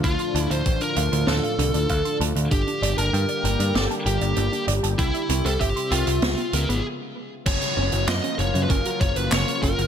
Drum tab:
CC |----------------|----------------|----------------|x---------------|
HH |xxxxxxxxxxxxxxxx|xxxxxxxxxxxxxxxx|xxxxxxxxxxxx----|xx-xxxxxxxxxxxxx|
CP |----------------|----------------|----------------|----x-------x---|
SD |--------o-------|--------o-------|--------o-------|----o-------o---|
BD |o---o-------o---|o---------------|o---o-----------|o-------o-o---o-|